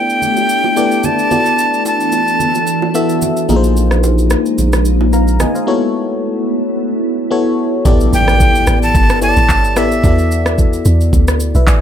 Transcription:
Already playing: ambient pad A3 D4 G4, fm electric piano B3 E4 G4 A4 D5, flute G5
0.10 shaker
0.22 low conga, shaker
0.37 low bongo, shaker
0.49 shaker
0.64 low bongo
0.76 fm electric piano B3 E4 G4 A4 D5, high bongo, shaker
0.91 shaker
1.03 flute A5, low conga, shaker
1.19 shaker
1.30 ambient pad E3 B3 F#4 A4, fm electric piano B3 E4 F#4 A4 D5, low conga, shaker
1.46 shaker
1.59 shaker
1.74 shaker
1.85 flute A5, high bongo, shaker
2.00 shaker
2.12 high bongo, low bongo, shaker
2.28 shaker
2.40 low conga, shaker
2.55 low bongo, shaker
2.67 shaker
2.82 low bongo
2.94 fm electric piano B3 E4 F#4 A4 E5, high bongo, shaker
3.09 shaker
3.22 low conga, shaker
3.37 shaker
3.49 sub bass A#1, ambient pad G#3 A#3 D#4, fm electric piano A#3 D#4 F4 G#4 A#4, low conga, shaker
3.56 fm electric piano C5
3.64 shaker
3.77 shaker
3.91 cross-stick, shaker
4.03 high bongo, shaker
4.18 shaker
4.30 cross-stick, high bongo, low bongo, shaker
4.46 shaker
4.58 sub bass A#1, low conga, shaker
4.73 cross-stick, low bongo, shaker
4.85 shaker
5.01 low bongo
5.13 fm electric piano F5 A#5, high bongo, shaker
5.28 shaker
5.40 fm electric piano D#5 G#5, cross-stick, low conga, shaker
5.55 fm electric piano C5 F5, shaker
5.67 ambient pad A3 B3 E4, fm electric piano B3 E4 F#4 A4 C#5
7.31 fm electric piano B3 E4 F#4 A4 C#5
7.85 log drum bass A1, fm electric piano B3 E4 G4 A4 D5, kick, impact, shaker
8.00 shaker
8.13 log drum bass A1, flute G5, shaker
8.28 cross-stick, shaker
8.40 kick, shaker
8.55 shaker
8.67 log drum bass A1, cross-stick, shaker
8.83 flute A5, shaker
8.95 log drum bass G1, kick, shaker
9.09 cross-stick, shaker
9.21 fm electric piano B3 E4 G4 A4 C#5, flute A5, shaker
9.29 fm electric piano D5
9.37 log drum bass A1, shaker
9.49 log drum bass G1, kick, clap, shaker
9.64 shaker
9.76 log drum bass A1, fm electric piano B3 E4 G4 A4 D5, flute E5, cross-stick, shaker
9.92 shaker
10.03 log drum bass E2, fm electric piano B3 E4 F#4 A4 D5, kick, shaker
10.18 shaker
10.31 shaker
10.46 cross-stick, shaker
10.58 kick, shaker
10.73 shaker
10.85 log drum bass E2, shaker
11.01 shaker
11.13 log drum bass D2, kick, shaker
11.28 cross-stick, shaker
11.40 shaker
11.55 log drum bass B1, fm electric piano B4 E5, shaker
11.67 log drum bass A1, fm electric piano D5 G#5, kick, clap, shaker

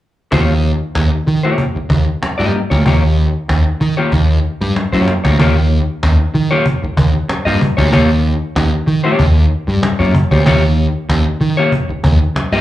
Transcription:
0.31 picked electric bass D#2, clean electric guitar A#3 F4 G4 C#5, cajon bass
0.63 cajon slap
0.95 picked electric bass D#2, cajon slap
1.27 picked electric bass D#3, cajon slap
1.43 clean electric guitar A#3 F4 G4 C#5
1.58 cajon bass, cajon slap
1.76 muted picked electric bass stroke, cajon slap
1.90 picked electric bass D#2, cajon bass
2.07 cajon slap
2.23 muted picked electric bass stroke, cajon slap
2.38 picked electric bass G2, clean electric guitar A#3 F4 G4 D#5
2.54 cajon slap
2.70 picked electric bass D2, clean electric guitar A#3 F4 G4 C#5
2.85 picked electric bass D#2, clean electric guitar A#3 F4 G4 C#5, cajon bass
3.18 cajon slap
3.49 picked electric bass D#2, cajon slap
3.81 picked electric bass D#3, cajon slap
3.97 clean electric guitar A#3 F4 G4 C#5
4.12 picked electric bass D#2, cajon bass, cajon slap
4.30 cajon slap
4.45 cajon slap
4.61 picked electric bass G2, cajon slap
4.76 muted picked electric bass stroke, cajon slap
4.92 picked electric bass F#2, clean electric guitar A#3 F4 G4 C#5
5.08 cajon slap
5.24 picked electric bass D2, clean electric guitar A#3 F4 G4 C#5, cajon slap
5.39 picked electric bass D#2, clean electric guitar A#3 F4 G4 C#5, cajon bass
6.03 picked electric bass D#2, cajon slap
6.34 picked electric bass D#3, cajon slap
6.51 clean electric guitar A#3 F4 G4 C#5
6.66 cajon bass, cajon slap
6.83 muted picked electric bass stroke, cajon slap
6.97 picked electric bass D#2, cajon bass
7.15 cajon slap
7.29 muted picked electric bass stroke, cajon slap
7.45 picked electric bass G2, clean electric guitar A#3 F4 G4 D#5
7.61 cajon bass
7.77 picked electric bass D2, clean electric guitar A#3 F4 G4 C#5
7.92 picked electric bass D#2, clean electric guitar A#3 F4 G4 C#5, cajon bass
8.56 picked electric bass D#2, cajon slap
8.87 picked electric bass D#3, cajon slap
9.04 clean electric guitar A#3 F4 G4 C#5
9.19 picked electric bass D#2, cajon bass, cajon slap
9.37 cajon slap
9.68 picked electric bass G2, cajon slap
9.83 muted picked electric bass stroke, cajon slap
9.99 picked electric bass F#2, clean electric guitar A#3 F4 G4 C#5
10.15 cajon bass
10.31 picked electric bass D2, clean electric guitar A#3 F4 G4 C#5
10.46 picked electric bass D#2, clean electric guitar A#3 F4 G4 C#5, cajon bass
11.09 picked electric bass D#2, cajon slap
11.41 picked electric bass D#3, cajon slap
11.57 clean electric guitar A#3 F4 G4 C#5
11.72 cajon bass, cajon slap
11.89 muted picked electric bass stroke, cajon slap
12.04 picked electric bass D#2, cajon bass
12.21 cajon slap
12.36 muted picked electric bass stroke, cajon slap
12.52 picked electric bass G2, clean electric guitar A#3 F4 G4 D#5

